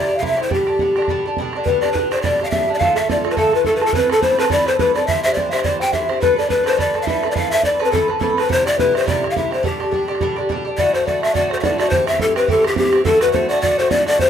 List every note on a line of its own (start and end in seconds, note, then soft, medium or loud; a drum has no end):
0.00 0.13 D5 medium
0.00 0.20 D5 medium
0.08 0.19 D3 soft
0.08 0.20 E4 soft
0.08 0.21 G4 soft
0.14 0.22 F5 medium
0.19 0.37 C3 medium
0.19 0.38 D3 medium
0.19 0.37 E4 medium
0.19 0.36 G4 medium
0.19 0.38 E5 medium
0.19 0.24 F5 medium
0.23 0.44 E5 medium
0.23 bodhran medium
0.37 0.49 D3 soft
0.37 0.50 E4 soft
0.37 0.50 G4 soft
0.37 0.50 C5 medium
0.37 bodhran medium
0.43 0.53 C5 medium
0.49 0.66 B2 medium
0.49 0.67 D3 medium
0.49 0.67 D4 medium
0.49 1.36 G4 medium
0.49 0.66 G4 medium
0.49 bodhran medium
0.54 1.34 G4 medium
0.67 0.80 D3 soft
0.67 0.80 D4 soft
0.67 0.79 G4 medium
0.67 bodhran medium
0.79 0.96 B2 medium
0.79 0.97 D3 medium
0.79 0.97 D4 medium
0.79 0.95 G4 medium
0.79 bodhran medium
0.96 1.09 D3 soft
0.96 1.09 D4 medium
0.96 1.08 G4 medium
0.96 bodhran medium
1.02 bodhran medium
1.08 1.25 B2 medium
1.08 1.26 D3 medium
1.08 1.26 D4 medium
1.08 1.24 G4 medium
1.08 bodhran medium
1.26 1.39 D3 soft
1.26 1.38 D4 soft
1.26 1.37 G4 soft
1.37 1.54 B2 medium
1.37 1.55 D3 medium
1.37 1.55 D4 medium
1.37 bodhran medium
1.42 1.54 G4 medium
1.53 1.67 D4 medium
1.53 1.67 G4 soft
1.53 bodhran medium
1.58 1.66 D3 soft
1.65 1.83 B2 medium
1.65 1.83 D3 medium
1.65 1.83 D4 medium
1.65 1.82 B4 medium
1.65 1.92 B4 medium
1.65 bodhran medium
1.69 1.81 G4 medium
1.81 1.95 D4 soft
1.81 1.94 G4 medium
1.81 1.92 D5 medium
1.81 bodhran medium
1.86 1.96 D3 soft
1.92 2.11 B2 medium
1.92 2.12 B4 medium
1.92 bodhran medium
1.97 2.12 D3 medium
1.97 2.12 D4 medium
1.97 2.10 G4 medium
2.11 2.23 D3 soft
2.11 2.24 D4 soft
2.11 2.23 G4 soft
2.11 2.23 C5 medium
2.11 2.21 C5 medium
2.11 bodhran medium
2.19 2.46 D5 loud
2.19 bodhran medium
2.24 2.40 B2 medium
2.24 2.40 D3 medium
2.24 2.40 D4 medium
2.24 2.40 G4 medium
2.24 2.47 D5 medium
2.24 bodhran medium
2.40 2.51 D3 soft
2.40 2.52 D4 soft
2.40 2.52 G4 medium
2.40 bodhran soft
2.44 2.52 F5 medium
2.44 2.51 F5 medium
2.50 2.68 B2 medium
2.50 2.68 D3 medium
2.50 2.67 D4 medium
2.50 2.76 E5 medium
2.50 2.81 E5 medium
2.50 bodhran medium
2.54 2.66 G4 medium
2.67 2.78 D3 soft
2.67 2.81 D4 soft
2.67 2.79 G4 medium
2.74 2.78 D5 medium
2.79 2.96 D3 medium
2.79 2.96 A3 medium
2.79 2.96 F4 medium
2.79 2.94 A4 medium
2.79 2.97 F5 medium
2.79 2.99 F5 medium
2.79 bodhran medium
2.96 3.08 A3 soft
2.96 3.09 F4 soft
2.96 3.08 A4 medium
2.96 3.12 E5 medium
2.96 3.10 E5 medium
2.96 bodhran medium
3.08 3.25 D3 soft
3.08 3.25 A3 medium
3.08 3.24 F4 medium
3.08 3.23 A4 medium
3.08 3.36 D5 medium
3.08 3.30 D5 medium
3.08 bodhran medium
3.24 3.36 A3 soft
3.24 3.37 F4 soft
3.24 3.37 A4 medium
3.24 bodhran medium
3.31 3.39 B4 medium
3.31 bodhran medium
3.36 3.53 D3 medium
3.36 3.53 A3 medium
3.36 3.53 F4 medium
3.36 3.56 A4 medium
3.36 3.51 A4 medium
3.36 bodhran medium
3.52 3.66 A3 soft
3.52 3.66 F4 soft
3.52 3.65 A4 soft
3.52 3.67 B4 medium
3.52 bodhran soft
3.65 3.82 D3 medium
3.65 3.83 A3 medium
3.65 3.81 F4 medium
3.65 3.75 A4 medium
3.65 3.77 A4 medium
3.65 3.80 A4 medium
3.65 bodhran medium
3.76 3.88 B4 medium
3.81 3.95 A3 soft
3.81 3.94 F4 soft
3.81 3.94 A4 medium
3.81 bodhran medium
3.86 3.96 A4 loud
3.93 4.10 E3 medium
3.93 4.11 C4 medium
3.93 4.10 A4 medium
3.93 4.08 B4 medium
3.93 4.11 B4 loud
3.93 4.08 B4 medium
3.93 bodhran medium
4.09 4.23 A4 medium
4.09 4.24 A4 medium
4.09 4.22 B4 medium
4.09 bodhran medium
4.13 4.22 C4 soft
4.21 4.38 E3 medium
4.21 4.39 C4 medium
4.21 4.38 A4 medium
4.21 4.36 B4 medium
4.21 4.40 C5 medium
4.21 4.41 C5 loud
4.21 bodhran medium
4.38 4.49 C4 soft
4.38 4.50 A4 medium
4.38 4.50 B4 medium
4.38 4.53 B4 medium
4.38 4.53 B4 loud
4.38 bodhran medium
4.45 bodhran medium
4.50 4.67 E3 medium
4.50 4.67 C4 medium
4.50 4.67 A4 medium
4.50 4.64 B4 medium
4.50 4.67 D5 loud
4.50 4.69 D5 loud
4.50 bodhran medium
4.66 4.79 C4 soft
4.66 4.80 A4 soft
4.66 4.79 B4 medium
4.66 4.80 C5 medium
4.66 4.81 C5 medium
4.66 bodhran medium
4.79 4.96 E3 medium
4.79 4.97 C4 medium
4.79 4.97 A4 medium
4.79 4.96 B4 medium
4.79 4.94 B4 medium
4.79 4.95 B4 medium
4.79 bodhran medium
4.95 5.09 A4 medium
4.95 5.08 B4 medium
4.95 5.09 D5 loud
4.95 5.06 D5 medium
4.95 bodhran medium
4.99 5.09 C4 soft
5.07 5.25 E3 medium
5.07 5.25 D4 medium
5.07 5.26 G4 medium
5.07 5.22 E5 medium
5.07 5.23 E5 loud
5.07 bodhran medium
5.11 5.25 C5 medium
5.23 5.37 C5 medium
5.23 5.37 E5 medium
5.23 5.33 E5 loud
5.23 bodhran medium
5.27 5.36 D4 soft
5.27 5.38 G4 soft
5.34 5.53 E3 soft
5.34 5.53 D4 medium
5.34 5.53 D5 medium
5.34 5.51 D5 medium
5.34 bodhran medium
5.39 5.53 G4 medium
5.39 5.52 C5 medium
5.49 5.65 C5 medium
5.49 5.63 E5 loud
5.49 5.66 E5 medium
5.49 5.54 F5 medium
5.53 5.65 D4 soft
5.53 5.65 G4 soft
5.53 bodhran medium
5.59 bodhran medium
5.63 5.81 E3 medium
5.63 5.82 D4 medium
5.63 5.81 G4 medium
5.63 5.79 C5 medium
5.63 5.79 D5 loud
5.63 5.81 D5 medium
5.63 bodhran medium
5.80 5.93 D4 soft
5.80 5.93 G4 soft
5.80 5.93 C5 soft
5.80 5.94 G5 medium
5.80 5.93 G5 loud
5.80 bodhran medium
5.92 6.10 E3 medium
5.92 6.10 D4 medium
5.92 6.09 G4 medium
5.92 6.08 C5 medium
5.92 6.21 E5 medium
5.92 6.23 E5 medium
5.92 bodhran medium
6.09 6.20 D4 soft
6.09 6.21 G4 soft
6.09 6.22 C5 medium
6.09 bodhran medium
6.20 6.38 G3 medium
6.20 6.38 D4 medium
6.20 6.37 A4 medium
6.20 6.40 B4 loud
6.20 6.36 B4 medium
6.20 6.35 B4 medium
6.20 bodhran medium
6.36 6.47 D4 soft
6.36 6.48 A4 soft
6.36 6.49 B4 medium
6.36 6.50 D5 medium
6.36 6.52 D5 loud
6.47 6.65 G3 soft
6.47 6.66 D4 medium
6.47 6.65 A4 medium
6.47 6.79 B4 medium
6.47 6.68 B4 medium
6.47 6.63 B4 medium
6.47 bodhran medium
6.64 6.77 D4 soft
6.64 6.77 A4 medium
6.64 6.78 B4 medium
6.64 6.79 C5 medium
6.64 bodhran medium
6.73 bodhran medium
6.77 6.95 G3 medium
6.77 6.95 D4 medium
6.77 6.94 A4 medium
6.77 6.93 B4 medium
6.77 7.06 D5 medium
6.77 7.01 D5 loud
6.77 bodhran medium
6.94 7.07 D4 soft
6.94 7.08 A4 soft
6.94 7.07 B4 medium
6.94 bodhran medium
7.02 7.07 F5 medium
7.06 7.23 G3 medium
7.06 7.24 D4 medium
7.06 7.23 A4 medium
7.06 7.22 B4 medium
7.06 7.28 E5 medium
7.06 7.33 E5 medium
7.06 bodhran medium
7.23 7.36 D4 soft
7.23 7.35 A4 soft
7.23 7.36 B4 medium
7.23 bodhran medium
7.29 7.37 D5 medium
7.29 7.35 D5 medium
7.35 7.52 E3 medium
7.35 7.53 C4 medium
7.35 7.53 A4 medium
7.35 7.51 B4 medium
7.35 7.53 F5 medium
7.35 7.53 F5 loud
7.35 bodhran medium
7.51 7.63 C4 soft
7.51 7.65 A4 soft
7.51 7.64 B4 soft
7.51 7.66 E5 loud
7.51 7.64 E5 medium
7.51 bodhran soft
7.63 7.80 E3 medium
7.63 7.81 C4 medium
7.63 7.80 A4 medium
7.63 7.78 B4 medium
7.63 7.87 D5 medium
7.63 7.86 D5 medium
7.63 bodhran medium
7.79 7.92 C4 soft
7.79 7.92 A4 medium
7.79 7.92 B4 medium
7.79 bodhran medium
7.84 7.91 B4 medium
7.84 7.92 B4 medium
7.84 bodhran medium
7.90 8.09 E3 medium
7.90 8.09 C4 medium
7.90 8.08 A4 medium
7.90 8.07 A4 loud
7.90 8.09 A4 medium
7.90 8.07 B4 medium
7.90 bodhran medium
8.08 8.21 C4 soft
8.08 8.21 A4 soft
8.08 8.21 B4 medium
8.08 bodhran soft
8.20 8.37 E3 medium
8.20 8.38 C4 medium
8.20 8.36 A4 medium
8.20 8.38 A4 medium
8.20 8.36 B4 medium
8.20 bodhran medium
8.37 8.49 C4 soft
8.37 8.49 A4 soft
8.37 8.50 B4 medium
8.37 8.53 B4 medium
8.37 bodhran medium
8.48 8.66 C3 medium
8.48 8.66 D3 medium
8.48 8.66 E4 medium
8.48 8.65 G4 medium
8.48 8.63 C5 medium
8.48 8.66 C5 loud
8.48 bodhran medium
8.63 8.78 E4 soft
8.63 8.78 G4 medium
8.63 8.78 D5 medium
8.63 8.78 D5 loud
8.63 bodhran medium
8.69 8.77 D3 soft
8.76 8.94 C3 medium
8.76 8.95 D3 soft
8.76 8.94 E4 medium
8.76 8.92 G4 medium
8.76 9.05 B4 medium
8.76 8.98 B4 medium
8.76 bodhran medium
8.93 9.06 D3 soft
8.93 9.06 E4 medium
8.93 9.06 G4 medium
8.93 9.09 C5 medium
8.93 bodhran medium
9.01 bodhran medium
9.06 9.23 C3 medium
9.06 9.23 D3 medium
9.06 9.23 E4 medium
9.06 9.21 G4 medium
9.06 9.27 D5 medium
9.06 9.30 D5 loud
9.06 bodhran medium
9.23 9.35 D3 soft
9.23 9.36 E4 soft
9.23 9.35 G4 soft
9.23 bodhran medium
9.30 9.38 F5 medium
9.30 9.36 F5 medium
9.35 9.52 C3 medium
9.35 9.52 D3 medium
9.35 9.51 E4 medium
9.35 9.50 G4 medium
9.35 9.52 E5 medium
9.35 9.54 E5 medium
9.35 bodhran medium
9.51 9.63 D3 medium
9.51 9.64 E4 soft
9.51 9.64 G4 medium
9.51 9.67 C5 medium
9.51 bodhran medium
9.63 9.80 B2 medium
9.63 9.81 D3 medium
9.63 9.80 D4 medium
9.63 9.78 G4 medium
9.63 10.50 G4 medium
9.63 9.91 G4 medium
9.63 bodhran medium
9.80 9.91 D3 soft
9.80 9.92 D4 soft
9.80 9.92 G4 soft
9.80 bodhran medium
9.90 10.08 B2 medium
9.90 10.09 D3 medium
9.90 10.08 D4 medium
9.90 10.21 G4 medium
9.90 9.94 A4 soft
9.90 bodhran medium
9.94 10.07 G4 medium
10.08 10.20 D3 medium
10.08 10.21 D4 medium
10.08 10.21 G4 medium
10.08 bodhran soft
10.15 10.24 F4 soft
10.15 bodhran soft
10.21 10.37 B2 medium
10.21 10.38 D3 medium
10.21 10.37 D4 medium
10.21 10.50 G4 medium
10.21 10.35 G4 medium
10.21 bodhran medium
10.36 10.49 D3 soft
10.36 10.49 D4 medium
10.36 10.49 G4 medium
10.36 bodhran medium
10.49 10.66 B2 medium
10.49 10.66 D3 medium
10.49 10.66 D4 medium
10.49 10.64 G4 medium
10.49 bodhran medium
10.65 10.77 D3 soft
10.65 10.79 D4 soft
10.65 10.77 G4 medium
10.77 10.94 A2 medium
10.77 10.95 D3 medium
10.77 10.94 A3 medium
10.77 10.92 F#4 medium
10.77 10.96 D5 medium
10.77 10.93 D5 medium
10.77 bodhran medium
10.93 11.05 D3 soft
10.93 11.06 A3 soft
10.93 11.06 F#4 soft
10.93 11.09 C5 medium
10.93 11.07 C5 medium
10.93 bodhran medium
11.01 11.22 A2 medium
11.01 bodhran soft
11.06 11.22 D3 medium
11.06 11.22 A3 medium
11.06 11.21 F#4 medium
11.06 11.23 D5 medium
11.06 11.25 D5 medium
11.06 bodhran medium
11.22 11.33 D3 soft
11.22 11.34 A3 soft
11.22 11.35 F#4 soft
11.22 11.34 E5 medium
11.22 11.34 E5 loud
11.22 bodhran medium
11.34 11.51 A2 medium
11.34 11.51 D3 medium
11.34 11.50 A3 medium
11.34 11.48 F#4 medium
11.34 11.51 D5 medium
11.34 11.50 D5 medium
11.34 bodhran medium
11.44 bodhran soft
11.49 11.62 D3 soft
11.49 11.63 A3 soft
11.49 11.62 F#4 medium
11.49 11.63 C5 medium
11.49 11.57 C5 medium
11.49 bodhran medium
11.58 11.65 E5 medium
11.58 bodhran medium
11.62 11.79 A2 medium
11.62 11.79 D3 medium
11.62 11.78 A3 medium
11.62 11.77 F#4 medium
11.62 11.78 D5 medium
11.62 11.79 D5 medium
11.62 bodhran loud
11.78 11.91 D3 soft
11.78 11.91 A3 medium
11.78 11.91 F#4 medium
11.78 11.91 D5 medium
11.78 bodhran medium
11.89 12.07 G2 medium
11.89 12.08 E3 medium
11.89 12.08 C4 medium
11.89 12.06 G4 medium
11.89 12.07 C5 medium
11.89 12.09 C5 loud
11.89 bodhran medium
12.07 12.18 E3 soft
12.07 12.20 C4 soft
12.07 12.20 G4 medium
12.07 12.23 E5 loud
12.07 12.13 E5 medium
12.07 bodhran medium
12.14 12.35 G2 medium
12.14 bodhran soft
12.19 12.36 E3 medium
12.19 12.36 C4 medium
12.19 12.34 G4 medium
12.19 12.35 A4 medium
12.19 12.36 A4 medium
12.19 bodhran medium
12.36 12.47 E3 medium
12.36 12.48 C4 medium
12.36 12.48 G4 medium
12.36 12.48 B4 medium
12.36 12.45 B4 medium
12.36 bodhran medium
12.46 12.64 G2 medium
12.46 12.65 E3 medium
12.46 12.65 C4 medium
12.46 12.63 G4 medium
12.46 12.65 A4 medium
12.46 12.50 B4 medium
12.46 bodhran medium
12.51 12.65 A4 medium
12.56 bodhran soft
12.64 12.76 E3 soft
12.64 12.77 C4 soft
12.64 12.77 G4 medium
12.64 12.76 G4 medium
12.64 12.77 G4 medium
12.64 bodhran medium
12.70 bodhran medium
12.76 12.93 G2 medium
12.76 12.94 E3 medium
12.76 12.94 C4 medium
12.76 13.04 G4 medium
12.76 13.08 G4 medium
12.76 12.92 G4 medium
12.76 bodhran medium
12.93 13.05 E3 soft
12.93 13.06 C4 soft
12.93 13.05 G4 medium
12.93 bodhran medium
13.05 13.21 A2 medium
13.05 13.21 D3 medium
13.05 13.21 A3 medium
13.05 13.20 F#4 medium
13.05 13.23 A4 loud
13.05 13.24 A4 medium
13.05 bodhran medium
13.21 13.32 D3 soft
13.21 13.33 A3 soft
13.21 13.34 F#4 medium
13.21 13.34 B4 medium
13.21 13.38 B4 medium
13.21 bodhran medium
13.28 bodhran soft
13.32 13.50 A2 medium
13.32 13.50 D3 medium
13.32 13.48 A3 medium
13.32 13.47 F#4 medium
13.32 13.50 C5 medium
13.32 bodhran medium
13.36 13.53 C5 medium
13.49 13.60 D3 soft
13.49 13.61 A3 medium
13.49 13.62 F#4 medium
13.49 13.61 D5 loud
13.49 13.61 D5 medium
13.49 bodhran medium
13.61 13.78 A2 medium
13.61 13.78 D3 medium
13.61 13.79 A3 medium
13.61 13.77 F#4 medium
13.61 13.80 D5 loud
13.61 bodhran medium
13.72 bodhran soft
13.78 13.90 D3 soft
13.78 13.91 A3 medium
13.78 13.91 F#4 medium
13.78 13.92 C5 medium
13.78 13.90 C5 medium
13.78 bodhran soft
13.85 bodhran soft
13.90 14.07 A2 medium
13.90 14.07 D3 medium
13.90 14.08 A3 medium
13.90 14.06 F#4 medium
13.90 14.06 D5 loud
13.90 14.07 D5 medium
13.90 bodhran medium
14.06 14.20 D3 soft
14.06 14.20 A3 medium
14.06 14.19 F#4 medium
14.06 14.22 D5 loud
14.06 14.19 D5 medium
14.06 bodhran soft
14.19 14.30 G2 medium
14.19 14.30 E3 medium
14.19 14.30 C4 medium
14.19 14.30 G4 medium
14.19 14.30 C5 medium
14.19 14.30 C5 loud
14.19 bodhran medium